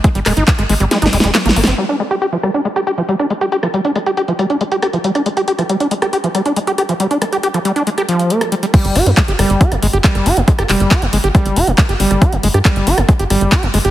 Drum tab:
CC |------------------------------------------------|------------------------------------------------|------------------------------------------------|------------------------------------------------|
HH |x--x--o--x--x--x--o--x--x--x--o--x--x--x--o--x--|------x--x--x--x--x--x--x--x--x--x--x--x--x--x--|x--x--x--x--x--x--x--x--x--x--x--x--x--x--x--x--|x--x--x--x--x--x--x--x--x--x--x--x--x--x--x--x--|
CP |------x-----x-----------------------x-----------|------------------------------------------------|------------------------------------------------|------------------------------------------------|
SD |------r--------r--------o---o---o---o---o---o---|------r-----------r--------r-----------r--------|---r--------r-----------r-----------r--------r--|---------r-----------r--------r-----------r-----|
BD |o-----------o-----------------------------------|------------------------------------------------|------------------------------------------------|------------------------------------------------|

CC |------------------------------------------------|x-----------------------------------------------|------------------------------------------------|------------------------------------------------|
HH |x--x--x--x--x--x--x--x--x--x--x--x--x--x--x--x--|x--x--o--x--x--x--o--x--x--x--o--x--x--x--o--x--|x--x--o--x--x--x--o--x--x--x--o--x--x--x--o--x--|x--x--o--x--x--x--o--x--x--x--o--x--x--x--o--x--|
CP |------------------------------------------------|------------x-----------------------x-----------|------x-----x-----------------------x-----------|------------x-----------------------x-----------|
SD |------r--------r-----------r-----------r--------|------r-----------r--------r-----------r--------|---r--------r-----------r-----------r--------r--|---------r-----------r--------r-----------r-----|
BD |------------------------------------------------|o-----------o-----------o-----------o-----------|o-----------o-----------o-----------o-----------|o-----------o-----------o-----------o-----------|